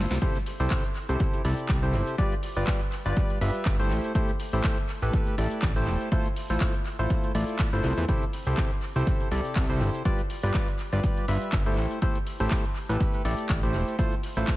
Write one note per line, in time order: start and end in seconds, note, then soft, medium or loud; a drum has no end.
0.00 0.19 A3 medium
0.00 0.19 E4 medium
0.00 0.19 F4 medium
0.00 0.19 A4 medium
0.00 0.19 C5 loud
0.11 0.18 C2 medium
0.11 snare medium
0.11 closed hi-hat soft
0.11 shaker medium
0.22 0.38 C3 loud
0.22 0.38 E4 medium
0.22 0.38 G4 medium
0.22 0.38 A4 medium
0.22 0.38 C5 loud
0.22 kick loud
0.22 closed hi-hat loud
0.22 shaker medium
0.35 closed hi-hat soft
0.35 shaker soft
0.46 open hi-hat loud
0.60 0.68 C2 loud
0.60 0.84 C3 loud
0.60 0.84 E4 medium
0.60 0.84 G4 medium
0.60 0.84 A4 medium
0.60 0.84 C5 loud
0.60 shaker medium
0.70 kick loud
0.70 clap loud
0.70 closed hi-hat loud
0.70 shaker medium
0.84 closed hi-hat soft
0.84 shaker soft
0.95 open hi-hat medium
1.09 1.17 C2 loud
1.09 1.42 C3 medium
1.09 1.42 E4 medium
1.09 1.42 G4 medium
1.09 1.42 A4 medium
1.09 1.42 C5 medium
1.09 closed hi-hat soft
1.09 shaker medium
1.20 kick loud
1.20 closed hi-hat medium
1.20 shaker medium
1.34 closed hi-hat soft
1.34 shaker soft
1.45 1.54 C2 medium
1.45 1.80 C3 medium
1.45 1.80 E4 medium
1.45 1.80 G4 medium
1.45 1.80 A4 medium
1.45 1.80 D5 medium
1.45 open hi-hat loud
1.58 closed hi-hat soft
1.58 shaker medium
1.69 1.95 C2 loud
1.69 kick loud
1.69 clap loud
1.69 closed hi-hat loud
1.69 shaker medium
1.83 2.16 C3 medium
1.83 2.16 E4 medium
1.83 2.16 G4 medium
1.83 2.16 A4 medium
1.83 2.16 C5 loud
1.83 closed hi-hat soft
1.83 shaker soft
1.94 2.03 G1 loud
1.94 open hi-hat medium
2.07 closed hi-hat soft
2.07 shaker medium
2.18 2.35 G3 loud
2.18 2.35 F4 medium
2.18 2.34 G4 medium
2.18 2.34 B4 medium
2.18 2.35 D5 loud
2.18 kick loud
2.18 closed hi-hat medium
2.18 shaker medium
2.32 closed hi-hat soft
2.32 shaker soft
2.43 open hi-hat loud
2.56 2.64 G1 loud
2.56 2.81 G3 loud
2.56 2.81 F4 medium
2.56 2.81 G4 medium
2.56 2.81 B4 medium
2.56 2.81 D5 loud
2.56 shaker medium
2.67 kick loud
2.67 clap loud
2.67 closed hi-hat loud
2.67 shaker medium
2.81 closed hi-hat soft
2.81 shaker soft
2.92 open hi-hat loud
3.06 3.13 G1 loud
3.06 3.39 G3 medium
3.06 3.39 F4 medium
3.06 3.39 G4 medium
3.06 3.39 B4 medium
3.06 3.39 D5 loud
3.06 closed hi-hat soft
3.06 shaker medium
3.17 kick loud
3.17 closed hi-hat medium
3.17 shaker medium
3.30 closed hi-hat soft
3.30 shaker soft
3.41 3.51 G1 medium
3.41 3.76 G3 medium
3.41 3.76 F4 medium
3.41 3.76 G4 medium
3.41 3.76 B4 medium
3.41 3.76 E5 medium
3.41 open hi-hat loud
3.55 closed hi-hat soft
3.55 shaker medium
3.65 3.92 G1 medium
3.65 kick loud
3.65 clap loud
3.65 closed hi-hat medium
3.65 shaker medium
3.79 4.12 A3 medium
3.79 4.13 E4 medium
3.79 4.12 G4 medium
3.79 4.13 A4 medium
3.79 4.12 C5 loud
3.79 closed hi-hat soft
3.79 shaker soft
3.90 4.00 A1 loud
3.90 open hi-hat medium
4.04 closed hi-hat soft
4.04 shaker medium
4.15 4.31 A3 loud
4.15 4.31 E4 medium
4.15 4.31 G4 medium
4.15 4.31 A4 medium
4.15 4.31 C5 loud
4.15 kick loud
4.15 closed hi-hat medium
4.15 shaker medium
4.29 closed hi-hat soft
4.29 shaker soft
4.40 open hi-hat loud
4.53 4.61 A1 loud
4.53 4.77 A3 loud
4.53 4.77 E4 medium
4.53 4.77 G4 medium
4.53 4.77 A4 medium
4.53 4.77 C5 loud
4.53 shaker medium
4.64 kick loud
4.64 clap loud
4.64 closed hi-hat medium
4.64 shaker medium
4.78 closed hi-hat soft
4.78 shaker soft
4.89 open hi-hat loud
5.02 5.10 A1 loud
5.02 5.35 A3 medium
5.02 5.35 E4 medium
5.02 5.35 G4 medium
5.02 5.35 A4 medium
5.02 5.35 B4 loud
5.02 closed hi-hat soft
5.02 shaker medium
5.13 kick loud
5.13 closed hi-hat medium
5.13 shaker medium
5.27 closed hi-hat soft
5.27 shaker soft
5.38 5.48 A1 medium
5.38 5.73 A3 medium
5.38 5.73 E4 medium
5.38 5.73 G4 medium
5.38 5.73 A4 medium
5.38 5.73 D5 medium
5.38 open hi-hat loud
5.52 closed hi-hat soft
5.52 shaker medium
5.62 5.89 A1 loud
5.62 kick loud
5.62 clap loud
5.62 closed hi-hat medium
5.62 shaker medium
5.76 6.09 A3 medium
5.76 6.09 E4 medium
5.76 6.09 G4 medium
5.76 6.09 A4 medium
5.76 6.09 C5 loud
5.76 closed hi-hat soft
5.76 shaker soft
5.87 5.97 E1 medium
5.87 open hi-hat loud
6.01 closed hi-hat soft
6.01 shaker medium
6.12 6.28 A3 loud
6.12 6.28 E4 medium
6.12 6.28 F4 medium
6.12 6.28 A4 medium
6.12 6.28 C5 loud
6.12 kick loud
6.12 closed hi-hat medium
6.12 shaker medium
6.25 closed hi-hat soft
6.25 shaker soft
6.36 open hi-hat loud
6.50 6.58 A1 loud
6.50 6.74 A3 loud
6.50 6.74 E4 medium
6.50 6.74 F4 medium
6.50 6.74 A4 medium
6.50 6.74 C5 loud
6.50 shaker medium
6.60 kick loud
6.60 clap loud
6.60 closed hi-hat medium
6.60 shaker medium
6.75 closed hi-hat soft
6.75 shaker soft
6.86 open hi-hat medium
6.99 7.07 A1 loud
6.99 7.32 A3 medium
6.99 7.32 E4 medium
6.99 7.32 F4 medium
6.99 7.32 A4 medium
6.99 7.32 C5 loud
6.99 closed hi-hat soft
6.99 shaker medium
7.10 kick loud
7.10 closed hi-hat medium
7.10 shaker medium
7.24 closed hi-hat soft
7.24 shaker soft
7.35 7.44 A1 medium
7.35 7.70 A3 medium
7.35 7.70 E4 medium
7.35 7.70 F4 medium
7.35 7.70 A4 medium
7.35 7.70 D5 medium
7.35 open hi-hat loud
7.48 closed hi-hat soft
7.48 shaker medium
7.59 kick loud
7.59 clap loud
7.59 closed hi-hat medium
7.59 shaker medium
7.73 7.81 G1 medium
7.73 8.06 A3 medium
7.73 8.06 E4 medium
7.73 8.06 F4 medium
7.73 8.06 A4 medium
7.73 8.06 C5 loud
7.73 closed hi-hat soft
7.73 shaker soft
7.84 7.93 C2 medium
7.84 open hi-hat loud
7.97 8.05 E2 loud
7.97 closed hi-hat soft
7.97 shaker medium
8.09 8.25 C3 loud
8.09 8.25 E4 medium
8.09 8.25 G4 medium
8.09 8.25 A4 medium
8.09 8.25 C5 loud
8.09 kick loud
8.09 closed hi-hat medium
8.09 shaker medium
8.22 closed hi-hat soft
8.22 shaker soft
8.33 open hi-hat loud
8.47 8.54 C2 loud
8.47 8.71 C3 loud
8.47 8.71 E4 medium
8.47 8.71 G4 medium
8.47 8.71 A4 medium
8.47 8.71 C5 loud
8.47 shaker medium
8.57 kick loud
8.57 clap loud
8.57 closed hi-hat medium
8.57 shaker medium
8.71 closed hi-hat soft
8.71 shaker soft
8.82 open hi-hat medium
8.96 9.04 C2 loud
8.96 9.29 C3 medium
8.96 9.29 E4 medium
8.96 9.29 G4 medium
8.96 9.29 A4 medium
8.96 9.29 C5 loud
8.96 closed hi-hat soft
8.96 shaker medium
9.07 kick loud
9.07 closed hi-hat medium
9.07 shaker medium
9.20 closed hi-hat soft
9.20 shaker soft
9.31 9.41 C2 medium
9.31 9.66 C3 medium
9.31 9.66 E4 medium
9.31 9.66 G4 medium
9.31 9.66 A4 medium
9.31 9.66 D5 medium
9.31 open hi-hat loud
9.45 closed hi-hat soft
9.45 shaker medium
9.56 9.82 C2 loud
9.56 kick loud
9.56 clap loud
9.56 closed hi-hat medium
9.56 shaker medium
9.70 10.03 C3 medium
9.70 10.03 E4 medium
9.70 10.03 G4 medium
9.70 10.03 A4 medium
9.70 10.03 C5 loud
9.70 closed hi-hat soft
9.70 shaker soft
9.81 9.90 G1 loud
9.81 open hi-hat medium
9.94 closed hi-hat soft
9.94 shaker medium
10.05 10.21 G3 medium
10.05 10.21 F4 medium
10.05 10.21 G4 medium
10.05 10.21 B4 medium
10.05 10.21 D5 loud
10.05 kick loud
10.05 closed hi-hat medium
10.05 shaker medium
10.19 closed hi-hat soft
10.19 shaker soft
10.30 open hi-hat loud
10.43 10.51 G1 loud
10.43 10.68 G3 loud
10.43 10.68 F4 medium
10.43 10.68 G4 medium
10.43 10.68 B4 medium
10.43 10.68 D5 loud
10.43 shaker medium
10.54 kick loud
10.54 clap loud
10.54 closed hi-hat medium
10.54 shaker medium
10.68 closed hi-hat soft
10.68 shaker soft
10.79 open hi-hat medium
10.93 11.00 G1 loud
10.93 11.26 G3 medium
10.93 11.26 F4 medium
10.93 11.26 G4 medium
10.93 11.26 B4 medium
10.93 11.26 D5 loud
10.93 closed hi-hat soft
10.93 shaker medium
11.04 kick loud
11.04 closed hi-hat medium
11.04 shaker medium
11.17 closed hi-hat soft
11.17 shaker soft
11.28 11.38 G1 loud
11.28 11.63 G3 medium
11.28 11.63 F4 medium
11.28 11.63 G4 medium
11.28 11.63 B4 medium
11.28 11.63 E5 medium
11.28 open hi-hat loud
11.42 closed hi-hat soft
11.42 shaker medium
11.52 11.79 G1 loud
11.52 kick loud
11.52 clap loud
11.52 closed hi-hat medium
11.52 shaker medium
11.66 11.99 A3 medium
11.66 11.99 E4 medium
11.66 11.99 G4 medium
11.66 11.99 A4 medium
11.66 11.99 C5 loud
11.66 closed hi-hat soft
11.66 shaker soft
11.77 11.87 A1 loud
11.77 open hi-hat loud
11.91 closed hi-hat soft
11.91 shaker medium
12.02 12.18 A3 loud
12.02 12.18 E4 medium
12.02 12.18 G4 medium
12.02 12.18 A4 medium
12.02 12.18 C5 loud
12.02 kick loud
12.02 closed hi-hat loud
12.02 shaker medium
12.15 closed hi-hat soft
12.15 shaker soft
12.27 open hi-hat loud
12.40 12.48 A1 loud
12.40 12.64 A3 loud
12.40 12.64 E4 medium
12.40 12.64 G4 medium
12.40 12.64 A4 medium
12.40 12.64 C5 loud
12.40 shaker medium
12.51 kick loud
12.51 clap loud
12.51 closed hi-hat loud
12.51 shaker medium
12.65 closed hi-hat soft
12.65 shaker soft
12.76 open hi-hat medium
12.89 12.97 A1 loud
12.89 13.22 A3 medium
12.89 13.22 E4 medium
12.89 13.22 G4 medium
12.89 13.22 A4 medium
12.89 13.22 B4 loud
12.89 closed hi-hat soft
12.89 shaker medium
13.00 kick loud
13.00 closed hi-hat medium
13.00 shaker medium
13.14 closed hi-hat soft
13.14 shaker soft
13.25 13.34 A1 medium
13.25 13.60 A3 medium
13.25 13.60 E4 medium
13.25 13.60 G4 medium
13.25 13.60 A4 medium
13.25 13.60 D5 medium
13.25 open hi-hat loud
13.39 closed hi-hat soft
13.39 shaker medium
13.49 13.76 A1 medium
13.49 kick loud
13.49 clap loud
13.49 closed hi-hat medium
13.49 shaker medium
13.63 13.96 A3 medium
13.63 13.96 E4 medium
13.63 13.96 G4 medium
13.63 13.96 A4 medium
13.63 13.96 C5 loud
13.63 closed hi-hat soft
13.63 shaker soft
13.74 13.84 E1 loud
13.74 open hi-hat medium
13.88 closed hi-hat soft
13.88 shaker medium
13.99 14.15 A3 loud
13.99 14.15 E4 medium
13.99 14.15 F4 medium
13.99 14.15 A4 medium
13.99 14.15 C5 loud
13.99 kick loud
13.99 closed hi-hat loud
13.99 shaker medium
14.12 closed hi-hat soft
14.12 shaker soft
14.23 open hi-hat loud
14.37 14.45 A1 loud
14.37 14.57 A3 loud
14.37 14.57 E4 medium
14.37 14.57 F4 medium
14.37 14.57 A4 medium
14.37 14.57 C5 loud
14.37 shaker medium
14.47 kick loud
14.47 clap loud
14.47 closed hi-hat loud
14.47 shaker medium